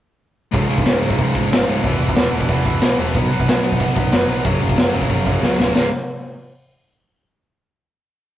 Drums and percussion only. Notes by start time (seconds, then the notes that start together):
0.54 kick, open hi-hat
0.78 kick
0.85 snare, open hi-hat
1.10 kick
1.19 kick, open hi-hat
1.35 kick
1.52 snare, open hi-hat
1.84 kick, open hi-hat
2.09 kick
2.16 snare, open hi-hat
2.41 kick
2.48 kick, open hi-hat
2.65 kick
2.81 snare, open hi-hat
3.14 kick, open hi-hat
3.40 kick
3.48 snare, open hi-hat
3.72 kick
3.80 kick, open hi-hat
3.97 kick
4.12 snare, open hi-hat
4.44 kick, open hi-hat
4.69 kick
4.77 snare, open hi-hat
5.02 kick
5.09 kick, open hi-hat
5.26 kick
5.43 snare
5.60 snare
5.75 snare, crash